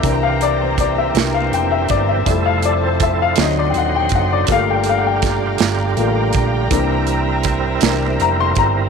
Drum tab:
HH |xxxxxx|xxxxxx|xxxxxx|xxxxxx|
SD |---o--|---o--|--oo--|---o--|
BD |o-o--o|o-o--o|o-o--o|o-o--o|